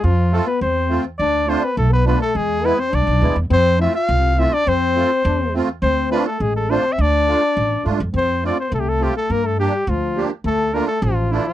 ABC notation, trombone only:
X:1
M:2/4
L:1/16
Q:1/4=104
K:none
V:1 name="Trombone"
F,2 A, B, C3 z | D2 C2 A, B, B, A, | ^G,2 B, C D3 z | C2 E F3 E D |
C4 D2 z2 | C3 A, ^G,2 C2 | D6 z2 | C2 D C A,3 A, |
_B, A, G,2 F,3 z | A,2 _B, A, F,2 E, F, |]